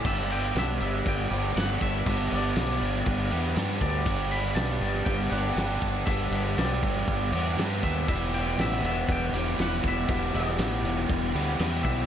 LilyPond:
<<
  \new Staff \with { instrumentName = "Clean electric guitar" } { \time 4/4 \key g \major \tempo 4 = 119 e''8 g''8 e''8 e''8 g''4 fis''8 e''8~ | e''8 d''2 r4 d''8~ | d''8 b''8 a''4 g''8 fis''4. | e''4 d''2 r8 e''8 |
e''8 g''8 e''8 e''8 g''4 fis''8 e''8~ | e''8 d''2 r4 e''8 | }
  \new Staff \with { instrumentName = "Overdriven electric guitar" } { \time 4/4 \key g \major <g b d' g'>2~ <g b d' g'>8 <g b d' g'>8 <g b d' g'>4 | <g b d' g'>2~ <g b d' g'>8 <g b d' g'>8 <g b d' g'>4 | <g b d' g'>2~ <g b d' g'>8 <g b d' g'>8 <g b d' g'>4 | <g b d' g'>2~ <g b d' g'>8 <g b d' g'>8 <g b d' g'>4 |
<e, b, e g b g'>2~ <e, b, e g b g'>8 <e, b, e g b g'>8 <e, b, e g b g'>4 | <e, b, e g b g'>2~ <e, b, e g b g'>8 <e, b, e g b g'>8 <e, b, e g b g'>4 | }
  \new Staff \with { instrumentName = "Fingered electric bass" } { \clef bass \time 4/4 \key g \major g,,4 b,,8 g,,8 g,,8 g,,8 g,,8 g,,8 | g,,8 g,,8 b,,8 g,,8 g,,8 e,8 g,8 d,8 | g,,4 b,,8 g,,8 g,,8 g,,8 g,,8 g,,8 | g,,8 g,,8 b,,8 g,,8 g,,8 e,8 g,8 ees,8 |
e,,4 a,,8 e,,8 e,,8 e,,8 e,,8 e,,8 | e,,8 e,,8 a,,8 e,,8 e,,8 d,8 e,8 b,,8 | }
  \new DrumStaff \with { instrumentName = "Drums" } \drummode { \time 4/4 <cymc bd>8 cymc8 <cymc sn>8 cymc8 <cymc bd>8 cymc8 <cymc sn>8 <cymc bd>8 | <cymc bd>8 cymc8 <cymc sn>8 cymc16 sn16 <cymc bd>8 cymc8 <cymc sn>8 <cymc bd>8 | <cymc bd>8 cymc8 <cymc sn>16 sn16 cymc16 sn16 <cymc bd>8 cymc8 <cymc sn>8 <cymc bd>8 | <cymc bd>8 cymc8 <cymc sn>16 sn16 <cymc bd>16 sn16 <cymc bd>8 cymc8 <cymc sn>8 <cymc bd>8 |
<cymc bd>8 cymc8 <cymc sn>8 cymc8 <cymc bd>8 cymc8 <cymc sn>8 <cymc bd>8 | <cymc bd>8 cymc8 <cymc sn>8 cymc8 <cymc bd>8 cymc8 <cymc sn>8 <cymc bd>8 | }
>>